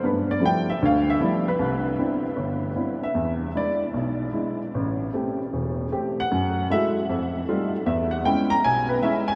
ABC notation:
X:1
M:4/4
L:1/8
Q:"Swing" 1/4=154
K:Em
V:1 name="Upright piano"
B d g e =f e d B- | B2 z4 z e- | e2 d z4 z | z6 z f- |
f2 e z4 z | e f g ^a ^g B e g |]
V:2 name="Upright piano"
[G,,B,]2 [=F,G,A,B,E] z [D,,D,]2 [F,G,A,B,E] z | C,,2 [B,CDE] z G,,,2 [B,CDE] z | E,,2 [^G,DE] z B,,,2 [G,DE] z | A,,,2 [A,CG] z E,,,2 [A,CG] z |
F,,2 [^G,A,EF] z =F,,2 [=G,A,_E=F] z | E,,2 [^G,^CE] z B,,,2 [G,CE] z |]